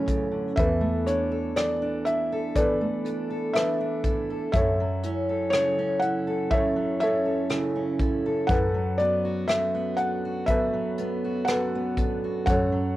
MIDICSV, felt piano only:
0, 0, Header, 1, 2, 480
1, 0, Start_track
1, 0, Tempo, 991736
1, 278, Time_signature, 4, 2, 24, 8
1, 6276, End_track
2, 0, Start_track
2, 0, Title_t, "Felt piano"
2, 0, Program_c, 0, 0
2, 0, Note_on_c, 0, 64, 47
2, 0, Note_on_c, 0, 69, 51
2, 0, Note_on_c, 0, 73, 77
2, 255, Note_off_c, 0, 73, 0
2, 264, Note_off_c, 0, 64, 0
2, 264, Note_off_c, 0, 69, 0
2, 271, Note_on_c, 0, 76, 72
2, 288, Note_on_c, 0, 69, 56
2, 288, Note_on_c, 0, 71, 54
2, 516, Note_on_c, 0, 73, 64
2, 522, Note_off_c, 0, 76, 0
2, 756, Note_on_c, 0, 74, 76
2, 764, Note_off_c, 0, 73, 0
2, 992, Note_on_c, 0, 76, 73
2, 1004, Note_off_c, 0, 74, 0
2, 1222, Note_off_c, 0, 69, 0
2, 1222, Note_off_c, 0, 71, 0
2, 1238, Note_on_c, 0, 74, 68
2, 1242, Note_off_c, 0, 76, 0
2, 1250, Note_on_c, 0, 71, 53
2, 1251, Note_on_c, 0, 69, 50
2, 1710, Note_on_c, 0, 76, 78
2, 1717, Note_off_c, 0, 71, 0
2, 1718, Note_off_c, 0, 69, 0
2, 1725, Note_on_c, 0, 69, 59
2, 1725, Note_on_c, 0, 71, 51
2, 1730, Note_off_c, 0, 74, 0
2, 2178, Note_off_c, 0, 71, 0
2, 2179, Note_off_c, 0, 69, 0
2, 2181, Note_off_c, 0, 76, 0
2, 2188, Note_on_c, 0, 76, 74
2, 2204, Note_on_c, 0, 69, 54
2, 2207, Note_on_c, 0, 73, 56
2, 2656, Note_off_c, 0, 73, 0
2, 2663, Note_on_c, 0, 73, 83
2, 2683, Note_off_c, 0, 76, 0
2, 2902, Note_on_c, 0, 78, 76
2, 2914, Note_off_c, 0, 73, 0
2, 3136, Note_off_c, 0, 69, 0
2, 3149, Note_on_c, 0, 76, 82
2, 3152, Note_off_c, 0, 78, 0
2, 3163, Note_on_c, 0, 73, 56
2, 3164, Note_on_c, 0, 69, 58
2, 3382, Note_off_c, 0, 76, 0
2, 3389, Note_on_c, 0, 76, 89
2, 3396, Note_off_c, 0, 69, 0
2, 3396, Note_off_c, 0, 73, 0
2, 3403, Note_on_c, 0, 69, 53
2, 3403, Note_on_c, 0, 73, 59
2, 4096, Note_off_c, 0, 69, 0
2, 4096, Note_off_c, 0, 73, 0
2, 4099, Note_on_c, 0, 78, 84
2, 4117, Note_on_c, 0, 71, 58
2, 4118, Note_on_c, 0, 69, 59
2, 4130, Note_off_c, 0, 76, 0
2, 4346, Note_on_c, 0, 74, 71
2, 4351, Note_off_c, 0, 78, 0
2, 4570, Note_off_c, 0, 74, 0
2, 4587, Note_on_c, 0, 76, 80
2, 4812, Note_off_c, 0, 76, 0
2, 4825, Note_on_c, 0, 78, 83
2, 5050, Note_off_c, 0, 78, 0
2, 5055, Note_off_c, 0, 71, 0
2, 5056, Note_off_c, 0, 69, 0
2, 5064, Note_on_c, 0, 76, 75
2, 5083, Note_on_c, 0, 69, 57
2, 5084, Note_on_c, 0, 71, 56
2, 5541, Note_on_c, 0, 78, 71
2, 5553, Note_off_c, 0, 71, 0
2, 5554, Note_off_c, 0, 69, 0
2, 5560, Note_on_c, 0, 71, 54
2, 5562, Note_on_c, 0, 69, 59
2, 5564, Note_off_c, 0, 76, 0
2, 6019, Note_off_c, 0, 71, 0
2, 6020, Note_off_c, 0, 69, 0
2, 6023, Note_off_c, 0, 78, 0
2, 6030, Note_on_c, 0, 78, 81
2, 6049, Note_on_c, 0, 73, 57
2, 6050, Note_on_c, 0, 69, 54
2, 6276, Note_off_c, 0, 69, 0
2, 6276, Note_off_c, 0, 73, 0
2, 6276, Note_off_c, 0, 78, 0
2, 6276, End_track
0, 0, End_of_file